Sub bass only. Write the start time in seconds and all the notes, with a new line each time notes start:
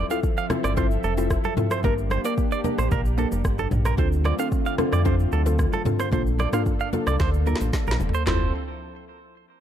0.64 G1
1.04 F1
1.84 G1
2.78 A1
2.92 A#1
3.32 F1
3.45 G1
3.72 A#1
3.98 D2
4.93 F2
5.32 D2
6.13 A#1
7.07 C2
7.20 D2
7.61 A1
7.87 A#1
8.00 E1
8.27 F1